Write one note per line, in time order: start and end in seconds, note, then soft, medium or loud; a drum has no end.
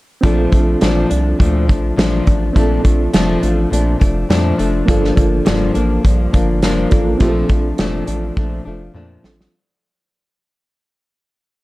0.21 0.47 A#1 loud
0.21 0.52 A#2 medium
0.21 0.53 F3 medium
0.21 0.52 A3 medium
0.21 2.51 C4 medium
0.21 2.51 D4 medium
0.21 0.51 D4 medium
0.21 2.52 F4 medium
0.21 kick loud
0.21 closed hi-hat medium
0.26 2.53 A4 medium
0.52 0.76 A#1 medium
0.52 0.80 F3 soft
0.52 0.81 A3 soft
0.52 0.81 D4 medium
0.52 kick medium
0.52 closed hi-hat medium
0.81 1.05 A1 medium
0.81 1.10 A#2 medium
0.81 1.11 F3 medium
0.81 1.10 A3 medium
0.81 1.08 D4 medium
0.81 snare loud
0.81 closed hi-hat medium
1.10 1.34 C2 medium
1.10 1.38 F3 soft
1.10 1.39 A3 soft
1.10 1.39 D4 medium
1.10 closed hi-hat medium
1.38 1.71 D2 medium
1.38 1.68 A#2 medium
1.38 1.69 F3 medium
1.38 1.68 A3 medium
1.38 1.67 D4 medium
1.38 kick medium
1.38 closed hi-hat medium
1.68 1.92 A#1 medium
1.68 1.96 F3 soft
1.68 1.97 A3 medium
1.68 1.97 D4 medium
1.68 kick medium
1.68 closed hi-hat medium
1.97 2.21 A1 medium
1.97 2.26 A#2 medium
1.97 2.27 F3 medium
1.97 2.26 A3 medium
1.97 2.25 D4 medium
1.97 snare loud
1.97 closed hi-hat medium
2.26 2.50 A1 medium
2.26 2.54 F3 soft
2.26 2.55 A3 soft
2.26 2.55 D4 medium
2.26 kick medium
2.26 closed hi-hat medium
2.53 2.79 A#1 loud
2.53 2.84 A#2 medium
2.53 2.85 F3 medium
2.53 2.84 A3 medium
2.53 4.83 C4 medium
2.53 4.84 D4 medium
2.53 4.84 F4 medium
2.53 kick loud
2.53 closed hi-hat medium
2.57 2.83 D4 medium
2.57 4.85 A4 medium
2.84 3.08 A#1 loud
2.84 3.12 F3 soft
2.84 3.13 A3 medium
2.84 3.13 D4 medium
2.84 kick medium
2.84 closed hi-hat medium
3.13 3.37 F1 medium
3.13 3.42 A#2 medium
3.13 3.43 F3 medium
3.13 3.42 A3 medium
3.13 3.40 D4 medium
3.13 snare loud
3.13 closed hi-hat medium
3.41 3.66 A1 medium
3.41 3.70 F3 soft
3.41 3.71 A3 medium
3.41 3.71 D4 medium
3.41 closed hi-hat medium
3.70 3.95 A#1 medium
3.70 4.00 A#2 medium
3.70 4.01 F3 medium
3.70 4.00 A3 medium
3.70 3.98 D4 medium
3.70 closed hi-hat medium
4.00 4.25 F1 medium
4.00 4.29 F3 soft
4.00 4.29 A3 medium
4.00 4.29 D4 medium
4.00 kick medium
4.00 closed hi-hat medium
4.29 4.53 F2 medium
4.29 4.59 A#2 medium
4.29 4.59 F3 medium
4.29 4.59 A3 medium
4.29 4.57 D4 medium
4.29 snare loud
4.29 closed hi-hat medium
4.58 4.83 F1 medium
4.58 4.87 F3 soft
4.58 4.88 A3 soft
4.58 4.88 D4 medium
4.58 closed hi-hat medium
4.86 5.12 G1 loud
4.86 5.16 G2 medium
4.86 5.17 F3 medium
4.86 6.86 A#3 medium
4.86 5.17 A#3 medium
4.86 6.87 D4 medium
4.86 5.15 D4 medium
4.86 6.88 F4 medium
4.86 kick loud
4.86 closed hi-hat medium
4.91 6.89 A4 medium
5.04 snare soft
5.16 5.41 G1 loud
5.16 5.45 F3 soft
5.16 5.45 A#3 medium
5.16 5.46 D4 medium
5.16 kick medium
5.16 closed hi-hat medium
5.45 5.70 F1 medium
5.45 5.75 G2 medium
5.45 5.75 F3 medium
5.45 5.75 A#3 medium
5.45 5.73 D4 medium
5.45 snare loud
5.45 closed hi-hat medium
5.74 5.99 A1 medium
5.74 6.03 F3 soft
5.74 6.04 A#3 soft
5.74 6.04 D4 medium
5.74 closed hi-hat medium
6.03 6.28 A#1 loud
6.03 6.33 G2 medium
6.03 6.33 F3 medium
6.03 6.33 A#3 medium
6.03 6.32 D4 medium
6.03 kick medium
6.03 closed hi-hat medium
6.33 6.65 G1 medium
6.33 6.61 F3 soft
6.33 6.62 A#3 medium
6.33 6.62 D4 medium
6.33 kick medium
6.33 closed hi-hat medium
6.62 6.86 F1 medium
6.62 6.91 G2 medium
6.62 6.92 F3 medium
6.62 6.92 A#3 medium
6.62 6.90 D4 medium
6.62 snare loud
6.62 closed hi-hat medium
6.90 7.15 A1 loud
6.90 7.20 A#3 medium
6.90 7.21 A#3 medium
6.90 7.18 D4 soft
6.90 7.20 D4 medium
6.90 7.19 F4 medium
6.90 7.21 A4 medium
6.90 kick medium
6.90 closed hi-hat medium
6.94 7.20 F3 soft
7.17 7.44 A#1 medium
7.17 7.50 A#2 medium
7.17 7.50 F3 medium
7.17 9.19 C4 medium
7.17 9.19 D4 medium
7.17 9.20 F4 medium
7.17 kick loud
7.17 closed hi-hat medium
7.22 7.50 A3 medium
7.22 7.48 D4 medium
7.22 7.29 G4 medium
7.29 9.24 A4 medium
7.49 7.73 A#1 medium
7.49 7.78 F3 soft
7.49 7.79 A3 soft
7.49 7.79 D4 soft
7.49 kick medium
7.49 closed hi-hat medium
7.78 8.02 F1 loud
7.78 8.08 A#2 medium
7.78 8.08 F3 medium
7.78 8.07 A3 medium
7.78 8.05 D4 medium
7.78 snare loud
7.78 closed hi-hat medium
8.07 8.31 A1 medium
8.07 8.36 F3 soft
8.07 8.37 A3 soft
8.07 8.36 D4 medium
8.07 closed hi-hat medium
8.36 8.60 A#1 medium
8.36 8.66 A#2 medium
8.36 8.66 F3 medium
8.36 8.66 A3 medium
8.36 8.64 D4 medium
8.36 kick medium
8.65 8.90 F1 medium
8.65 8.93 F3 soft
8.65 8.94 A3 medium
8.65 8.95 D4 medium
8.94 9.18 F2 medium
8.94 9.24 A#2 medium
8.94 9.24 F3 medium
8.94 9.24 A3 medium
8.94 9.22 D4 medium
9.23 9.47 A1 medium
9.23 9.54 F3 soft
9.23 9.54 A3 medium
9.23 9.53 C4 medium
9.23 9.53 D4 medium
9.23 9.53 D4 soft
9.23 9.53 F4 soft
9.23 9.54 A4 medium
9.23 snare medium
9.41 snare medium